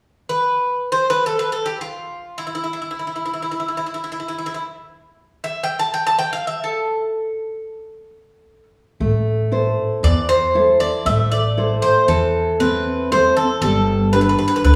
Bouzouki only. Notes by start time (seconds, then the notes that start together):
0.29 B4
0.92 C5
1.10 B4
1.26 A4
1.39 B4
1.52 A4
1.66 G4
1.81 F4
2.38 E4
2.47 E4
2.55 E4
2.64 E4
2.73 E4
2.82 E4
2.91 E4
2.99 E4
3.07 E4
3.16 E4
3.26 E4
3.34 E4
3.42 E4
3.51 E4
3.60 E4
3.68 E4
3.77 E4
3.86 E4
3.94 E4
4.04 E4
4.12 E4
4.20 E4
4.28 E4
4.38 E4
4.46 E4
4.54 E4
5.44 E5
5.63 G5
5.79 A5
5.94 G5
6.07 A5
6.19 G5
6.33 F5
6.47 E5
6.64 A4
10.04 D5
10.29 C5
10.80 D5
11.06 E5
11.32 D5
11.82 C5
12.08 A4
12.60 B4
13.12 C5
13.37 A4
13.62 A4
14.13 B4
14.21 B4
14.29 B4
14.39 B4
14.48 B4
14.56 B4
14.64 B4